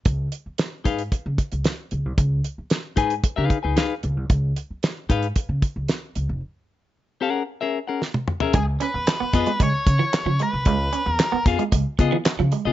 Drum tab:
HH |x-x-x-xxx-xxx-x-|x-x-x-xxx-x-x-x-|x-x-x-xxx-x-x-x-|----------------|
CP |----------------|----------------|----------------|----------------|
SD |----o-------o---|----o-------o---|----o-------o---|------------o---|
T1 |----------------|----------------|----------------|-------------o--|
T2 |----------------|----------------|----------------|--------------o-|
FT |----------------|----------------|----------------|---------------o|
BD |o-----o-o-o-----|o-----o-o-o-----|o-----o-o-o-----|----------------|

HH |x-x-x-xxx-x-x-x-|x-x-x-xxx-x-x-x-|
CP |----x-------x---|----x-------x---|
SD |----o-------o---|----o-------o---|
T1 |----------------|----------------|
T2 |----------------|----------------|
FT |----------------|----------------|
BD |o-----o-o-o-----|o-----o-o-o-----|